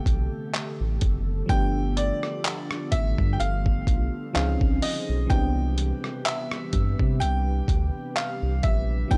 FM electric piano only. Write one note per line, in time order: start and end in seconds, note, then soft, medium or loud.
0.00 1.44 E3 medium
0.00 1.45 A3 medium
0.00 1.45 B3 medium
0.00 1.46 C4 medium
0.00 1.47 G4 medium
1.46 4.29 F3 medium
1.46 4.30 A3 medium
1.46 4.31 B3 medium
1.51 4.32 D4 medium
1.51 4.33 G4 medium
4.33 5.30 F3 medium
4.33 5.29 C4 medium
4.33 5.30 C#4 medium
4.33 5.31 D#4 medium
4.33 5.31 G#4 medium
5.27 9.06 E3 medium
5.27 9.06 B3 medium
5.27 9.07 C4 medium
5.32 9.08 D4 medium
5.32 9.09 G4 medium
9.08 9.18 F3 medium
9.08 9.18 B3 medium
9.08 9.18 D4 medium
9.13 9.18 E4 medium